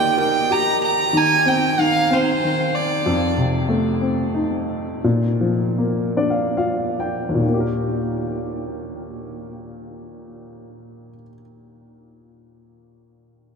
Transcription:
0, 0, Header, 1, 3, 480
1, 0, Start_track
1, 0, Key_signature, -3, "major"
1, 0, Tempo, 639659
1, 849, Time_signature, 3, 2, 24, 8
1, 2767, Tempo, 674916
1, 3727, Tempo, 734394
1, 4207, Tempo, 794702
1, 4687, Tempo, 869565
1, 5167, Tempo, 909091
1, 8398, End_track
2, 0, Start_track
2, 0, Title_t, "Violin"
2, 0, Program_c, 0, 40
2, 0, Note_on_c, 0, 79, 86
2, 138, Note_off_c, 0, 79, 0
2, 150, Note_on_c, 0, 79, 74
2, 392, Note_on_c, 0, 82, 82
2, 403, Note_off_c, 0, 79, 0
2, 621, Note_off_c, 0, 82, 0
2, 631, Note_on_c, 0, 82, 76
2, 882, Note_on_c, 0, 80, 92
2, 893, Note_off_c, 0, 82, 0
2, 1111, Note_on_c, 0, 79, 77
2, 1122, Note_off_c, 0, 80, 0
2, 1353, Note_on_c, 0, 77, 80
2, 1365, Note_off_c, 0, 79, 0
2, 1600, Note_on_c, 0, 72, 68
2, 1612, Note_off_c, 0, 77, 0
2, 2061, Note_on_c, 0, 74, 57
2, 2072, Note_off_c, 0, 72, 0
2, 2532, Note_off_c, 0, 74, 0
2, 8398, End_track
3, 0, Start_track
3, 0, Title_t, "Upright piano"
3, 0, Program_c, 1, 0
3, 0, Control_c, 1, 64, 127
3, 0, Note_on_c, 1, 51, 57
3, 0, Note_on_c, 1, 58, 45
3, 0, Note_on_c, 1, 67, 46
3, 132, Note_on_c, 1, 70, 47
3, 363, Note_off_c, 1, 67, 0
3, 374, Note_on_c, 1, 67, 48
3, 580, Note_off_c, 1, 58, 0
3, 822, Note_off_c, 1, 51, 0
3, 830, Note_off_c, 1, 70, 0
3, 838, Note_off_c, 1, 67, 0
3, 848, Note_on_c, 1, 51, 56
3, 858, Control_c, 1, 64, 0
3, 987, Control_c, 1, 64, 127
3, 1092, Note_on_c, 1, 60, 44
3, 1328, Note_off_c, 1, 51, 0
3, 1339, Note_on_c, 1, 51, 43
3, 1568, Note_off_c, 1, 60, 0
3, 1580, Note_on_c, 1, 60, 41
3, 1818, Note_off_c, 1, 51, 0
3, 1829, Note_on_c, 1, 51, 46
3, 2270, Note_off_c, 1, 60, 0
3, 2282, Note_off_c, 1, 51, 0
3, 2294, Control_c, 1, 64, 0
3, 2295, Note_on_c, 1, 41, 52
3, 2416, Control_c, 1, 64, 127
3, 2530, Note_on_c, 1, 48, 48
3, 2766, Note_on_c, 1, 57, 46
3, 2999, Note_on_c, 1, 60, 37
3, 3234, Note_on_c, 1, 63, 40
3, 3452, Note_off_c, 1, 48, 0
3, 3697, Note_off_c, 1, 57, 0
3, 3702, Note_off_c, 1, 41, 0
3, 3704, Note_off_c, 1, 60, 0
3, 3711, Note_off_c, 1, 63, 0
3, 3730, Note_on_c, 1, 46, 50
3, 3736, Control_c, 1, 64, 0
3, 3832, Control_c, 1, 64, 127
3, 3970, Note_on_c, 1, 53, 41
3, 4213, Note_on_c, 1, 58, 45
3, 4447, Note_on_c, 1, 62, 37
3, 4449, Note_on_c, 1, 74, 46
3, 4520, Note_off_c, 1, 74, 0
3, 4527, Note_on_c, 1, 77, 41
3, 4678, Note_off_c, 1, 77, 0
3, 4690, Note_on_c, 1, 65, 39
3, 4690, Note_on_c, 1, 77, 46
3, 4902, Note_off_c, 1, 53, 0
3, 4907, Note_off_c, 1, 77, 0
3, 4925, Note_on_c, 1, 79, 47
3, 5087, Note_on_c, 1, 39, 37
3, 5111, Note_off_c, 1, 46, 0
3, 5119, Note_on_c, 1, 46, 37
3, 5148, Note_off_c, 1, 58, 0
3, 5148, Note_off_c, 1, 62, 0
3, 5152, Note_off_c, 1, 79, 0
3, 5154, Note_off_c, 1, 65, 0
3, 5158, Note_on_c, 1, 51, 33
3, 5173, Control_c, 1, 64, 0
3, 5189, Note_on_c, 1, 58, 36
3, 5222, Note_on_c, 1, 67, 38
3, 5255, Note_on_c, 1, 70, 40
3, 5275, Control_c, 1, 64, 127
3, 7097, Note_off_c, 1, 39, 0
3, 7128, Note_off_c, 1, 46, 0
3, 7165, Note_off_c, 1, 51, 0
3, 7196, Note_off_c, 1, 58, 0
3, 7229, Note_off_c, 1, 67, 0
3, 7262, Note_off_c, 1, 70, 0
3, 8398, End_track
0, 0, End_of_file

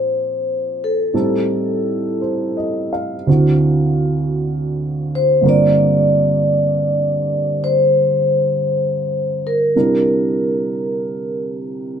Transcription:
0, 0, Header, 1, 3, 480
1, 0, Start_track
1, 0, Tempo, 1075269
1, 504, Time_signature, 4, 2, 24, 8
1, 5357, End_track
2, 0, Start_track
2, 0, Title_t, "Vibraphone"
2, 0, Program_c, 0, 11
2, 0, Note_on_c, 0, 72, 67
2, 375, Note_on_c, 0, 69, 52
2, 389, Note_off_c, 0, 72, 0
2, 1304, Note_off_c, 0, 69, 0
2, 2300, Note_on_c, 0, 72, 64
2, 2443, Note_off_c, 0, 72, 0
2, 2450, Note_on_c, 0, 74, 74
2, 3410, Note_on_c, 0, 72, 65
2, 3430, Note_off_c, 0, 74, 0
2, 4226, Note_on_c, 0, 70, 51
2, 4235, Note_off_c, 0, 72, 0
2, 5152, Note_off_c, 0, 70, 0
2, 5357, End_track
3, 0, Start_track
3, 0, Title_t, "Upright piano"
3, 0, Program_c, 1, 0
3, 0, Control_c, 1, 64, 127
3, 0, Note_on_c, 1, 46, 43
3, 0, Note_on_c, 1, 53, 39
3, 0, Note_on_c, 1, 60, 41
3, 0, Note_on_c, 1, 62, 39
3, 0, Note_on_c, 1, 69, 46
3, 505, Note_off_c, 1, 60, 0
3, 506, Note_off_c, 1, 69, 0
3, 506, Note_on_c, 1, 45, 37
3, 507, Note_off_c, 1, 46, 0
3, 509, Note_off_c, 1, 53, 0
3, 510, Note_off_c, 1, 62, 0
3, 510, Control_c, 1, 64, 0
3, 510, Note_on_c, 1, 55, 36
3, 510, Note_on_c, 1, 63, 36
3, 512, Note_on_c, 1, 60, 36
3, 513, Note_on_c, 1, 69, 42
3, 597, Control_c, 1, 64, 127
3, 988, Note_on_c, 1, 72, 36
3, 1147, Note_on_c, 1, 75, 35
3, 1297, Note_off_c, 1, 72, 0
3, 1306, Note_on_c, 1, 77, 36
3, 1397, Note_off_c, 1, 75, 0
3, 1454, Note_off_c, 1, 60, 0
3, 1458, Note_on_c, 1, 38, 35
3, 1460, Note_on_c, 1, 50, 30
3, 1461, Note_on_c, 1, 60, 32
3, 1463, Note_off_c, 1, 45, 0
3, 1465, Note_off_c, 1, 55, 0
3, 1465, Note_off_c, 1, 63, 0
3, 1465, Note_on_c, 1, 64, 32
3, 1466, Note_off_c, 1, 69, 0
3, 1467, Note_on_c, 1, 66, 38
3, 1469, Control_c, 1, 64, 0
3, 1539, Control_c, 1, 64, 127
3, 1557, Note_off_c, 1, 77, 0
3, 2415, Note_off_c, 1, 50, 0
3, 2417, Note_on_c, 1, 43, 38
3, 2422, Note_on_c, 1, 50, 36
3, 2423, Note_off_c, 1, 60, 0
3, 2424, Note_off_c, 1, 38, 0
3, 2426, Note_on_c, 1, 58, 36
3, 2427, Note_off_c, 1, 64, 0
3, 2428, Note_off_c, 1, 66, 0
3, 2430, Note_on_c, 1, 60, 35
3, 2431, Control_c, 1, 64, 0
3, 2436, Note_on_c, 1, 65, 35
3, 2438, Note_on_c, 1, 70, 41
3, 2515, Control_c, 1, 64, 127
3, 4346, Note_off_c, 1, 43, 0
3, 4349, Note_off_c, 1, 50, 0
3, 4351, Note_off_c, 1, 58, 0
3, 4353, Note_off_c, 1, 60, 0
3, 4353, Note_off_c, 1, 70, 0
3, 4354, Note_on_c, 1, 48, 38
3, 4355, Control_c, 1, 64, 0
3, 4356, Note_off_c, 1, 65, 0
3, 4358, Note_on_c, 1, 55, 34
3, 4360, Note_on_c, 1, 70, 42
3, 4361, Note_on_c, 1, 62, 36
3, 4363, Note_on_c, 1, 64, 34
3, 4432, Control_c, 1, 64, 127
3, 5357, Note_off_c, 1, 48, 0
3, 5357, Note_off_c, 1, 55, 0
3, 5357, Note_off_c, 1, 62, 0
3, 5357, Note_off_c, 1, 64, 0
3, 5357, Note_off_c, 1, 70, 0
3, 5357, End_track
0, 0, End_of_file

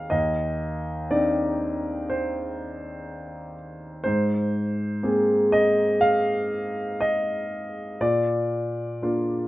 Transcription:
0, 0, Header, 1, 2, 480
1, 0, Start_track
1, 0, Tempo, 985222
1, 56, Time_signature, 4, 2, 24, 8
1, 3415, Tempo, 1010101
1, 4588, End_track
2, 0, Start_track
2, 0, Title_t, "Grand piano"
2, 0, Program_c, 0, 0
2, 0, Control_c, 0, 64, 127
2, 0, Note_on_c, 0, 77, 81
2, 0, Note_on_c, 0, 79, 77
2, 48, Note_on_c, 0, 75, 76
2, 56, Note_on_c, 0, 39, 64
2, 63, Control_c, 0, 64, 0
2, 65, Note_off_c, 0, 79, 0
2, 69, Note_off_c, 0, 77, 0
2, 150, Control_c, 0, 64, 127
2, 539, Note_on_c, 0, 60, 45
2, 539, Note_on_c, 0, 74, 76
2, 541, Note_on_c, 0, 62, 44
2, 543, Note_on_c, 0, 63, 49
2, 553, Note_off_c, 0, 75, 0
2, 1021, Note_on_c, 0, 72, 68
2, 1040, Note_off_c, 0, 74, 0
2, 1716, Note_off_c, 0, 72, 0
2, 1955, Note_off_c, 0, 60, 0
2, 1956, Note_off_c, 0, 62, 0
2, 1957, Note_off_c, 0, 39, 0
2, 1957, Note_off_c, 0, 63, 0
2, 1966, Note_on_c, 0, 72, 81
2, 1978, Note_on_c, 0, 44, 61
2, 1983, Control_c, 0, 64, 0
2, 2079, Control_c, 0, 64, 127
2, 2451, Note_on_c, 0, 58, 50
2, 2452, Note_on_c, 0, 60, 43
2, 2454, Note_on_c, 0, 68, 57
2, 2669, Note_off_c, 0, 72, 0
2, 2691, Note_on_c, 0, 75, 93
2, 2916, Note_off_c, 0, 75, 0
2, 2927, Note_on_c, 0, 77, 91
2, 3394, Note_off_c, 0, 77, 0
2, 3413, Note_on_c, 0, 75, 87
2, 3874, Note_off_c, 0, 58, 0
2, 3874, Note_off_c, 0, 75, 0
2, 3875, Note_off_c, 0, 60, 0
2, 3876, Note_off_c, 0, 44, 0
2, 3876, Note_off_c, 0, 68, 0
2, 3889, Note_on_c, 0, 46, 63
2, 3890, Note_on_c, 0, 74, 81
2, 3902, Control_c, 0, 64, 0
2, 3980, Control_c, 0, 64, 127
2, 4373, Note_on_c, 0, 58, 46
2, 4374, Note_on_c, 0, 62, 39
2, 4375, Note_on_c, 0, 65, 50
2, 4588, Note_off_c, 0, 46, 0
2, 4588, Note_off_c, 0, 58, 0
2, 4588, Note_off_c, 0, 62, 0
2, 4588, Note_off_c, 0, 65, 0
2, 4588, Note_off_c, 0, 74, 0
2, 4588, End_track
0, 0, End_of_file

